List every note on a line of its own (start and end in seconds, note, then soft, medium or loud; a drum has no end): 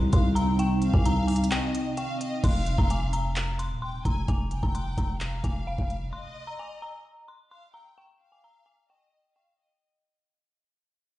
0.00 0.12 C2 loud
0.00 2.40 C3 medium
0.00 2.40 C4 medium
0.00 2.40 D#4 medium
0.13 0.90 C2 loud
0.13 0.35 F5 medium
0.13 0.32 C6 medium
0.13 kick medium
0.13 closed hi-hat medium
0.35 0.58 G5 medium
0.35 0.55 A#5 medium
0.35 closed hi-hat medium
0.59 0.92 G5 loud
0.59 closed hi-hat medium
0.82 1.47 F5 medium
0.82 closed hi-hat medium
0.94 1.49 C2 loud
0.94 1.03 G#5 medium
0.94 kick loud
1.05 1.25 A#5 medium
1.05 closed hi-hat medium
1.28 1.47 G#5 medium
1.28 closed hi-hat medium
1.28 open hi-hat medium
1.36 closed hi-hat medium
1.44 closed hi-hat medium
1.51 1.95 D#5 medium
1.51 1.95 G5 medium
1.51 clap loud
1.51 closed hi-hat medium
1.75 closed hi-hat medium
1.97 2.19 F5 medium
1.97 2.41 G5 medium
1.97 closed hi-hat medium
2.21 2.43 D#5 medium
2.21 closed hi-hat medium
2.43 2.77 F1 loud
2.43 3.32 F5 loud
2.43 2.76 C6 loud
2.43 kick loud
2.43 closed hi-hat medium
2.43 crash medium
2.66 closed hi-hat medium
2.78 3.72 F1 loud
2.78 2.88 A#5 medium
2.78 kick medium
2.90 3.10 G#5 medium
2.90 closed hi-hat medium
3.13 3.56 A#5 medium
3.13 closed hi-hat medium
3.36 clap loud
3.36 closed hi-hat medium
3.59 3.78 C6 medium
3.59 closed hi-hat medium
3.71 4.04 D#1 loud
3.82 4.04 G5 medium
3.82 4.01 C6 medium
4.05 4.27 F1 loud
4.05 4.27 G#5 medium
4.05 4.25 A#5 medium
4.05 kick loud
4.05 closed hi-hat medium
4.28 4.62 F1 loud
4.28 4.61 G#5 loud
4.28 kick loud
4.28 closed hi-hat medium
4.51 5.17 G5 medium
4.51 closed hi-hat medium
4.63 4.96 F1 loud
4.63 4.72 A#5 medium
4.63 kick loud
4.75 4.94 C6 medium
4.75 closed hi-hat medium
4.98 5.42 F1 loud
4.98 5.41 A#5 medium
4.98 kick medium
4.98 closed hi-hat medium
5.20 6.09 F5 medium
5.20 clap loud
5.20 closed hi-hat medium
5.44 5.77 F1 loud
5.44 5.63 G#5 medium
5.44 kick loud
5.44 closed hi-hat medium
5.67 6.10 F5 medium
5.78 6.12 F1 loud
5.78 kick loud
5.90 closed hi-hat medium
6.13 7.01 D#5 loud
6.13 6.45 C6 loud
6.47 6.57 A#5 medium
6.59 6.79 G#5 medium
6.82 7.26 A#5 medium
7.28 7.48 C6 medium
7.51 7.73 F5 medium
7.51 7.71 C6 medium
7.74 7.96 G5 medium
7.74 7.93 A#5 medium
7.98 8.30 G5 loud
8.20 8.86 F5 medium
8.32 8.42 G#5 medium
8.44 8.63 A#5 medium
8.66 8.86 G#5 medium
8.90 9.33 D#5 medium
8.90 9.33 G5 medium
9.36 9.58 F5 medium
9.36 9.79 G5 medium
9.59 9.81 D#5 medium